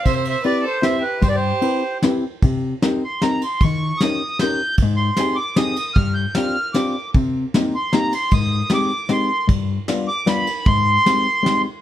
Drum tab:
RD |xxx-x-|x-x-x-|x-x-xx|x-x-x-|
SD |----o-|----o-|--o-o-|--o-o-|
BD |o-----|o-----|o-----|o-----|

RD |x-x-xx|x-x-x-|x-x-xx|x-x-x-|
SD |--o-o-|--o-o-|--o-o-|--o-o-|
BD |o-----|o-----|o-----|o-----|

RD |x-x-xx|x-x-x-|
SD |--o-o-|--o-o-|
BD |o-----|o-----|